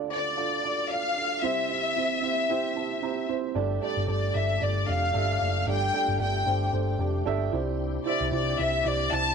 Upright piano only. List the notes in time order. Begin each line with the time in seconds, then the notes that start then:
Already playing: D2 D3 D4 F4 A4 D5
0.10 D4 F4 A4
0.37 D4 F4 A4 D5
0.64 D4 F4 A4 D5
0.90 D4 F4 A4 D5
1.16 D4 F4 A4 D5
1.42 C2 C3 C4 E4 G4 C5
1.69 C4 E4 G4 C5
1.96 C4 E4 G4 C5
2.22 C4 E4 G4 C5 F5
2.49 C4 E4 G4 C5 G5
2.76 C4 E4 G4 C5 A5
3.02 C4 E4 G4 C5 A#5
3.29 C4 E4 G4 C5 C6
3.55 G2 D4 G4 A4 D5
3.81 D4 G4 A4 D5
4.07 D4 G4 A4 D5
4.33 D4 G4 A4 D5
4.60 D4 G4 A4 D5
4.86 D4 G4 A4 D5
5.13 D4 G4 A4 E5
5.40 D4 G4 A4 D5
5.67 G2 D4 G4 A4 D5
5.93 D4 G4 A4 D5
6.19 D4 G4 A4 D5
6.45 D4 G4 A4 C5
6.72 D4 G4 A4 C5
6.99 D4 G4 A4 D5
7.26 D4 G4 A4 E5
7.52 C3 E4 G4 C5 D5
8.05 E4 G4 C5 E5
8.32 E4 G4 C5 D5
8.58 E4 G4 C5 E5
8.85 E4 G4 C5 D5
9.11 E4 G4 C5 D5